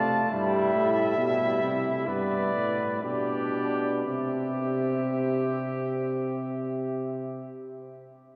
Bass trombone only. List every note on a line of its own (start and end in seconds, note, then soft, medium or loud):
0.00 0.20 C3 medium
0.33 0.74 G2 loud
0.75 1.17 A2 medium
1.18 1.63 B2 medium
1.62 2.06 C3 medium
2.07 2.53 G2 medium
2.54 3.02 A2 medium
3.03 4.04 B2 medium
4.06 7.54 C3 medium